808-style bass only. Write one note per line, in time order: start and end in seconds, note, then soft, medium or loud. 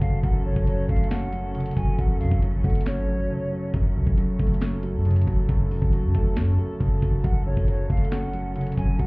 0.02 0.23 F#1 loud
0.23 0.47 F#1 loud
0.45 0.56 G#1 loud
0.56 0.88 F#1 loud
0.89 1.73 F#1 loud
1.77 1.98 F#1 loud
1.99 2.22 F#1 loud
2.21 2.31 F#2 loud
2.31 2.55 F#1 loud
2.53 2.64 G#1 loud
2.64 2.99 F#1 loud
2.97 3.28 G#1 loud
3.74 3.97 F#1 loud
3.96 4.06 C#2 loud
4.07 4.38 F#1 loud
4.40 4.96 F#1 loud
4.94 5.25 F#2 loud
5.27 5.48 F#1 loud
5.49 5.81 F#1 loud
5.82 6.05 F#1 loud
6.04 6.14 F#2 loud
6.15 6.38 F#1 loud
6.37 6.57 F#2 loud
6.80 7.01 F#1 loud
7.02 7.23 F#1 loud
7.24 7.48 F#1 loud
7.46 7.57 G#1 loud
7.57 7.89 F#1 loud
7.90 8.74 F#1 loud
8.78 8.99 F#1 loud
8.99 9.07 F#1 loud